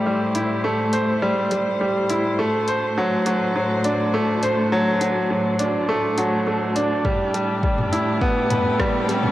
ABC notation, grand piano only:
X:1
M:4/4
L:1/8
Q:1/4=103
K:Dmix
V:1 name="Grand piano" clef=bass
G, E A, c G, G, G, E | A, c F, F, F, D A, c | F, F, F, D A, F, A, D | G, G, G, E B, B G, G, |]